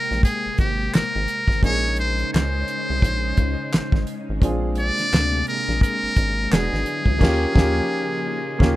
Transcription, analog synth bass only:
0.11 0.23 A#1 medium
0.46 0.51 G#1 soft
0.59 0.89 G#1 medium
0.95 1.03 G#1 soft
1.15 1.27 G#1 medium
1.48 1.61 G#1 medium
1.63 2.24 A#1 loud
2.34 2.64 C#2 loud
2.90 3.01 C2 medium
3.03 3.33 A#1 medium
3.39 3.56 C#2 medium
3.74 3.82 G#1 soft
3.93 4.05 G#1 medium
4.29 4.41 G#1 medium
4.42 4.91 A#1 loud
5.13 5.43 D2 loud
5.68 5.80 A#1 loud
6.03 6.08 G#1 medium
6.17 6.47 G#1 medium
6.52 6.70 E1 loud
6.73 6.85 G#1 medium
7.06 7.19 C#2 loud
7.22 7.46 D#2 loud
7.57 7.81 D#2 loud
8.61 8.76 D#2 loud

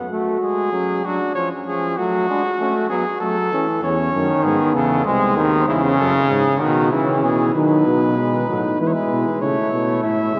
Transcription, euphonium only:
3.82 4.11 E2 medium
4.13 4.27 F#2 medium
4.44 4.58 G#2 medium
4.74 5.05 E2 medium
5.05 5.37 C2 medium
5.36 5.66 D#2 medium
5.67 5.98 E2 medium
5.98 6.12 F#2 medium
6.30 6.44 G#2 medium
6.61 6.94 B2 medium
6.92 7.25 C#3 medium
7.23 7.54 B2 medium
7.55 7.84 D#3 medium
7.86 8.48 B2 medium
8.49 8.79 A2 medium
8.80 8.94 E3 medium
9.11 9.25 B2 medium
9.41 9.55 C#3 medium
9.72 10.03 B2 medium
10.04 10.34 A2 medium
10.35 10.40 C#3 medium

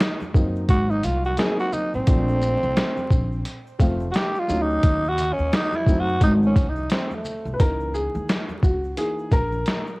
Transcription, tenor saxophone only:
0.00 0.32 D#4 medium
0.70 0.92 F#4 loud
0.90 1.06 D#4 loud
1.05 1.25 F4 loud
1.26 1.40 F#4 medium
1.39 1.59 G#4 loud
1.60 1.75 F#4 loud
1.74 1.94 D#4 loud
1.95 3.63 C4 loud
4.11 4.18 F#4 medium
4.16 4.41 G4 loud
4.39 4.64 F4 loud
4.62 5.10 D#4 medium
5.09 5.34 F#4 loud
5.33 5.57 C#4 medium
5.56 5.78 D#4 loud
5.76 6.01 E4 medium
6.00 6.22 F#4 medium
6.23 6.33 D#4 loud
6.46 6.70 C#4 medium
6.69 6.91 D#4 loud
6.91 7.16 C4 medium
7.15 7.60 A3 medium

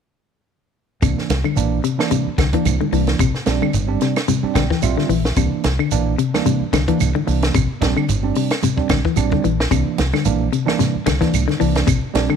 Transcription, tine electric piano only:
1.02 1.32 E3 medium
1.02 1.32 A#3 medium
1.02 1.32 D4 medium
1.56 1.79 E3 medium
1.56 1.79 A#3 medium
1.56 1.80 D4 medium
1.98 2.28 E3 medium
1.98 2.28 A#3 medium
1.98 2.28 D4 medium
2.52 2.74 E3 medium
2.52 2.75 A#3 medium
2.52 2.75 D4 medium
2.92 3.20 E3 medium
2.92 3.20 A#3 medium
2.92 3.20 D4 medium
3.46 3.69 G3 medium
3.46 3.69 C4 medium
3.46 3.70 D4 medium
3.87 4.17 G3 medium
3.87 4.18 C4 medium
3.87 4.18 D4 medium
4.43 4.65 G3 medium
4.43 4.65 C4 medium
4.43 4.65 D4 medium
4.54 4.80 G5 medium
4.82 5.12 G3 medium
4.82 5.12 C4 medium
4.82 5.13 F4 medium
4.82 5.34 E5 medium
5.36 5.66 E3 medium
5.36 5.67 A#3 medium
5.36 5.67 D4 medium
5.92 6.14 E3 medium
5.92 6.14 A#3 medium
5.92 6.14 D4 medium
6.34 6.63 E3 medium
6.34 6.63 A#3 medium
6.34 6.63 D4 medium
6.88 7.09 E3 medium
6.88 7.09 A#3 medium
6.88 7.09 D4 medium
7.26 7.54 E3 medium
7.26 7.54 A#3 medium
7.26 7.54 D4 medium
7.81 8.04 G3 medium
7.81 8.04 C4 medium
7.81 8.04 D4 medium
8.23 8.52 G3 medium
8.23 8.52 C4 medium
8.23 8.53 D4 medium
8.76 8.98 G3 medium
8.76 8.99 C4 medium
8.76 8.99 D4 medium
9.16 9.46 G3 medium
9.16 9.46 C4 medium
9.16 9.46 D4 medium
9.70 10.00 E3 medium
9.70 10.00 A#3 medium
9.70 10.01 D4 medium
10.25 10.48 E3 medium
10.25 10.48 A#3 medium
10.25 10.48 D4 medium
10.66 10.95 E3 medium
10.66 10.96 A#3 medium
10.66 10.96 D4 medium
11.20 11.42 E3 medium
11.20 11.42 A#3 medium
11.20 11.42 D4 medium
11.59 11.87 E3 medium
11.59 11.87 A#3 medium
11.59 11.87 D4 medium
12.14 12.36 G3 medium
12.14 12.36 C4 medium
12.14 12.36 D4 medium

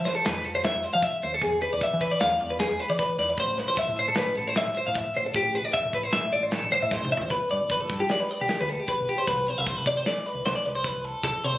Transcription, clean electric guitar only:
0.05 0.15 C5 medium
0.15 0.25 A4 medium
0.25 0.45 B4 medium
0.45 0.54 A4 medium
0.55 0.64 C5 medium
0.65 0.85 E5 medium
0.85 0.93 C5 medium
0.93 1.03 F5 medium
1.03 1.23 E5 medium
1.23 1.33 C5 medium
1.34 1.43 A4 medium
1.43 1.62 G#4 medium
1.62 1.72 B4 medium
1.73 1.82 D5 medium
1.83 2.02 E5 medium
2.01 2.11 B4 medium
2.11 2.20 D5 medium
2.21 2.41 F5 medium
2.41 2.51 D5 medium
2.50 2.59 B4 medium
2.60 2.80 G#4 medium
2.80 2.90 B4 medium
2.90 2.99 D5 medium
2.99 3.19 B4 medium
3.19 3.30 D5 medium
3.30 3.39 B4 medium
3.40 3.58 C5 medium
3.58 3.68 B4 medium
3.68 3.78 C5 medium
3.79 3.98 E5 medium
3.99 4.08 C5 medium
4.08 4.17 A4 medium
4.17 4.37 B4 medium
4.37 4.48 A4 medium
4.48 4.57 C5 medium
4.57 4.77 E5 medium
4.77 4.86 C5 medium
4.87 4.96 F5 medium
4.96 5.16 E5 medium
5.17 5.26 C5 medium
5.26 5.35 A4 medium
5.36 5.55 G4 medium
5.55 5.65 B4 medium
5.65 5.74 D5 medium
5.73 5.93 E5 medium
5.95 6.04 B4 medium
6.04 6.13 C5 medium
6.13 6.33 E5 medium
6.33 6.43 D5 medium
6.43 6.52 C5 medium
6.52 6.72 A4 medium
6.72 6.82 C5 medium
6.82 6.92 E5 medium
6.92 7.12 C5 medium
7.12 7.21 E5 medium
7.21 7.31 C5 medium
7.31 7.50 B4 medium
7.51 7.71 D5 medium
7.71 7.81 B4 medium
7.81 8.00 A4 medium
8.00 8.10 G4 medium
8.11 8.20 D5 medium
8.20 8.31 B4 medium
8.31 8.40 D5 medium
8.41 8.60 G4 medium
8.61 8.70 B4 medium
8.70 8.80 A4 medium
8.80 8.89 G4 medium
8.89 9.08 B4 medium
9.09 9.18 G4 medium
9.18 9.27 C5 medium
9.28 9.48 B4 medium
9.48 9.58 C5 medium
9.58 9.67 E5 medium
9.67 9.77 C5 medium
9.77 9.87 B4 medium
9.87 9.97 D5 medium
9.97 10.06 C5 medium
10.07 10.26 D5 medium
10.26 10.45 B4 medium
10.46 10.55 C5 medium
10.56 10.66 D5 medium
10.66 10.75 B4 medium
10.75 10.85 C5 medium
10.85 11.05 B4 medium
11.05 11.23 A4 medium
11.24 11.44 A4 medium
11.44 11.58 C5 medium

